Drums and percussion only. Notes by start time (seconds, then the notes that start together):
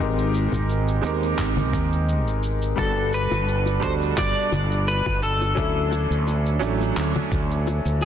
0.18 shaker
0.35 shaker
0.52 low conga, shaker
0.69 shaker
0.88 shaker
1.04 shaker
1.23 shaker
1.39 kick, clap, shaker
1.57 high conga, shaker
1.73 kick, shaker
1.93 shaker
2.09 shaker
2.27 shaker
2.43 shaker
2.62 shaker
2.78 kick, high bongo, shaker
3.13 shaker
3.31 high bongo, shaker
3.48 shaker
3.66 high bongo, shaker
3.83 kick, shaker
4.02 shaker
4.18 kick, clap, high bongo, shaker
4.52 high bongo, high conga, shaker
4.71 shaker
4.88 shaker
5.06 kick, high bongo
5.23 shaker
5.41 high bongo, shaker
5.57 kick, shaker
5.92 high bongo, shaker
6.11 shaker
6.27 high bongo, shaker
6.46 shaker
6.62 shaker
6.81 high bongo, shaker
6.97 clap, shaker
7.16 high bongo, high conga
7.32 kick, shaker
7.51 shaker
7.67 high bongo, shaker
7.86 shaker
8.01 high bongo, shaker